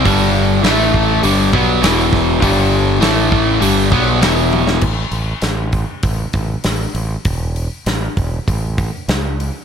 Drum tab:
CC |----------------|----------------|x---------------|----------------|
HH |o---o---o---o---|o---o---o---o---|--o-o-o-o-o-o-o-|o-o-o-o-o-o-o-o-|
SD |----o-------o-o-|----o-------o--o|----o-------o---|----o-------o---|
T1 |----------------|--------------o-|----------------|----------------|
BD |o-----o---o---o-|o-----o---o-----|o-----o-o-o-----|o-----o-o-o-----|